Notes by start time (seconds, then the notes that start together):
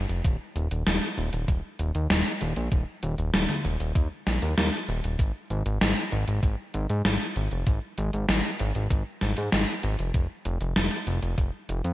0.09 F1, closed hi-hat
0.25 D#1, kick, closed hi-hat
0.56 D#1, closed hi-hat
0.71 D#1, closed hi-hat
0.87 D#1, snare, closed hi-hat
1.18 D#1, closed hi-hat
1.33 D#1, closed hi-hat
1.48 D#1, kick, closed hi-hat
1.79 D#1, closed hi-hat
1.95 D#2, closed hi-hat
2.10 D#1, snare, closed hi-hat
2.41 D#1, closed hi-hat
2.56 A#1, closed hi-hat
2.72 D#1, kick, closed hi-hat
3.03 D#1, closed hi-hat
3.18 D#1, closed hi-hat
3.34 D#1, snare, closed hi-hat
3.49 mid tom
3.65 D#1, closed hi-hat
3.80 D#1, closed hi-hat
3.95 D#2, kick, closed hi-hat
4.27 A#1, snare, closed hi-hat
4.42 D#2, closed hi-hat
4.58 D#2, snare, closed hi-hat
4.89 D#1, closed hi-hat
5.04 D#1, closed hi-hat
5.19 G#1, kick, closed hi-hat
5.50 G#1, closed hi-hat
5.66 G#1, closed hi-hat
5.81 G#1, snare, closed hi-hat
6.12 G#1, closed hi-hat
6.28 G#1, closed hi-hat
6.43 G#1, kick, closed hi-hat
6.74 G#1, closed hi-hat
6.90 G#2, closed hi-hat
7.05 G#1, snare, closed hi-hat
7.36 G#1, closed hi-hat
7.51 F1, closed hi-hat
7.67 G#1, kick, closed hi-hat
7.98 G#1, closed hi-hat
8.13 G#1, closed hi-hat
8.29 G#1, snare, closed hi-hat
8.59 G#1, closed hi-hat
8.75 G#1, closed hi-hat
8.90 G#1, kick, closed hi-hat
9.21 G#1, snare, closed hi-hat
9.37 G#2, closed hi-hat
9.52 G#1, snare, closed hi-hat
9.83 G#1, closed hi-hat
9.99 F1, closed hi-hat
10.14 F1, kick, closed hi-hat
10.45 F1, closed hi-hat
10.61 F1, closed hi-hat
10.76 F1, snare, closed hi-hat
11.07 F1, closed hi-hat
11.22 F1, closed hi-hat
11.38 F1, kick, closed hi-hat
11.69 F1, closed hi-hat
11.84 F2, closed hi-hat